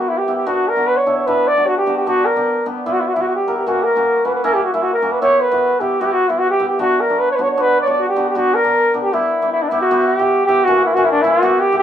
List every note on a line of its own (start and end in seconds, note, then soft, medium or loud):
0.00 0.12 B3 medium
0.00 0.12 E4 medium
0.00 0.10 F#4 medium
0.00 0.12 G4 medium
0.09 0.19 E4 loud
0.17 0.35 G4 medium
0.28 0.38 B3 medium
0.28 0.38 E4 medium
0.28 0.38 G4 medium
0.36 0.48 G4 medium
0.46 0.62 B3 medium
0.46 0.62 D4 medium
0.46 0.62 F#4 medium
0.46 0.70 F#4 medium
0.68 0.88 A#4 medium
0.76 0.92 B3 medium
0.76 0.92 D4 medium
0.76 0.92 F#4 medium
0.87 0.98 B4 loud
0.97 1.17 C#5 medium
1.06 1.17 B3 medium
1.06 1.17 D4 medium
1.06 1.17 E4 medium
1.18 1.28 C#5 medium
1.26 1.42 B3 medium
1.26 1.42 D4 medium
1.26 1.42 E4 medium
1.26 1.49 B4 loud
1.47 1.69 D5 loud
1.57 1.72 B3 medium
1.57 1.72 D4 medium
1.57 1.72 F#4 medium
1.67 1.77 F#4 medium
1.77 1.96 G4 medium
1.86 1.96 B3 medium
1.86 1.97 D4 medium
1.86 1.97 F#4 medium
1.97 2.09 G4 medium
2.06 2.21 B3 medium
2.06 2.22 D4 medium
2.06 2.27 F#4 loud
2.06 2.22 G4 medium
2.25 2.66 A#4 medium
2.36 2.51 B3 medium
2.36 2.52 D4 medium
2.36 2.51 G4 medium
2.66 2.76 B3 medium
2.66 2.76 D4 medium
2.66 2.76 G4 medium
2.85 3.01 B3 medium
2.85 2.94 E4 medium
2.85 3.01 E4 medium
2.85 3.01 G4 medium
2.92 3.02 F#4 medium
3.00 3.09 E4 medium
3.08 3.15 F#4 medium
3.14 3.31 B3 medium
3.14 3.23 E4 medium
3.14 3.31 E4 medium
3.14 3.31 G4 medium
3.21 3.25 F#4 medium
3.28 3.35 F#4 medium
3.35 3.54 G4 medium
3.47 3.56 B3 medium
3.47 3.56 E4 medium
3.47 3.56 A#4 medium
3.57 3.68 G4 medium
3.66 3.81 A#3 medium
3.66 3.81 C#4 medium
3.66 3.85 F#4 medium
3.66 3.81 F#4 medium
3.83 4.27 A#4 medium
3.96 4.10 A#3 medium
3.96 4.10 C#4 medium
3.96 4.10 F#4 medium
4.25 4.34 A#3 medium
4.25 4.34 C#4 medium
4.25 4.35 F#4 medium
4.25 4.35 B4 medium
4.35 4.45 B4 medium
4.44 4.59 A#3 medium
4.44 4.59 C#4 medium
4.44 4.59 E4 loud
4.44 4.55 A#4 loud
4.54 4.64 G4 medium
4.64 4.73 F#4 medium
4.73 4.88 A#3 medium
4.73 4.88 C#4 medium
4.73 4.84 E4 medium
4.73 4.88 E4 medium
4.82 4.93 F#4 medium
4.93 5.14 A#4 medium
5.02 5.12 A#3 medium
5.02 5.12 C#4 medium
5.02 5.13 F#4 medium
5.12 5.21 B4 medium
5.22 5.37 B3 medium
5.22 5.37 E4 medium
5.22 5.37 G4 medium
5.22 5.43 C#5 loud
5.41 5.82 B4 medium
5.51 5.67 B3 medium
5.51 5.67 E4 medium
5.51 5.67 F#4 medium
5.80 5.91 B3 medium
5.80 5.91 E4 medium
5.80 6.02 G4 medium
5.80 5.91 G4 medium
6.00 6.16 B3 medium
6.00 6.16 E4 medium
6.00 6.06 F#4 medium
6.00 6.16 G4 medium
6.05 6.14 G4 medium
6.12 6.30 F#4 medium
6.29 6.45 B3 medium
6.29 6.40 E4 medium
6.29 6.45 E4 medium
6.29 6.45 G4 medium
6.38 6.49 F#4 medium
6.50 6.68 G4 medium
6.60 6.70 B3 medium
6.60 6.70 E4 medium
6.60 6.70 G4 medium
6.68 6.78 G4 medium
6.79 6.94 B3 medium
6.79 6.94 D4 medium
6.79 6.94 F#4 medium
6.79 7.02 F#4 loud
7.00 7.21 A#4 medium
7.10 7.24 B3 medium
7.10 7.24 D4 medium
7.10 7.24 F#4 medium
7.19 7.29 B4 medium
7.31 7.37 C#5 medium
7.35 7.48 B3 medium
7.35 7.48 D4 medium
7.35 7.48 F#4 medium
7.35 7.43 B4 medium
7.42 7.50 C#5 medium
7.50 7.63 C#5 medium
7.57 7.72 B3 medium
7.57 7.72 D4 medium
7.57 7.72 F#4 medium
7.61 7.79 B4 loud
7.81 7.91 C#5 medium
7.81 7.84 D5 medium
7.87 8.02 B3 medium
7.87 8.02 D4 medium
7.87 8.02 F#4 medium
7.87 8.01 D5 medium
7.99 8.08 F#4 medium
8.08 8.26 G4 medium
8.16 8.26 B3 medium
8.16 8.26 D4 medium
8.16 8.26 F#4 medium
8.29 8.37 G4 medium
8.35 8.50 B3 medium
8.35 8.50 D4 medium
8.35 8.56 F#4 loud
8.35 8.50 G4 medium
8.55 8.94 A#4 loud
8.64 8.79 B3 medium
8.64 8.79 D4 medium
8.64 8.79 A#4 medium
8.94 9.04 B3 medium
8.94 9.04 D4 medium
8.94 9.04 G4 medium
9.02 9.15 G4 medium
9.13 9.28 B3 medium
9.13 9.51 E4 medium
9.13 9.28 E4 medium
9.13 9.28 G4 medium
9.42 9.57 B3 medium
9.42 9.57 E4 medium
9.42 9.57 G4 medium
9.52 9.63 E4 loud
9.62 9.70 D4 medium
9.68 9.81 B3 medium
9.68 9.80 E4 medium
9.68 9.81 E4 medium
9.68 9.81 G4 medium
9.81 10.08 F#4 medium
9.91 10.06 B3 medium
9.91 10.05 E4 medium
9.91 10.06 G4 medium
10.07 10.45 G4 loud
10.19 10.34 B3 medium
10.19 10.34 E4 medium
10.19 10.34 F#4 medium
10.46 10.58 B3 medium
10.46 10.58 E4 medium
10.46 10.65 G4 loud
10.46 10.58 G4 medium
10.64 10.96 E3 medium
10.64 10.82 A#3 medium
10.64 10.82 C#4 medium
10.64 10.84 F#4 loud
10.64 10.82 F#4 medium
10.85 10.95 E4 medium
10.94 11.22 E3 medium
10.94 11.11 A#3 medium
10.94 11.11 C#4 medium
10.94 11.06 F#4 loud
10.94 11.11 F#4 medium
11.04 11.10 E4 medium
11.11 11.23 D4 loud
11.22 11.50 E3 medium
11.22 11.35 A#3 medium
11.22 11.35 C#4 medium
11.22 11.32 E4 loud
11.22 11.35 E4 medium
11.31 11.61 F#4 medium
11.42 11.58 B3 medium
11.42 11.58 E4 medium
11.42 11.58 G4 medium
11.60 11.78 G4 loud
11.72 11.83 B3 medium
11.72 11.83 E4 medium
11.72 11.83 G4 medium
11.78 11.83 G4 loud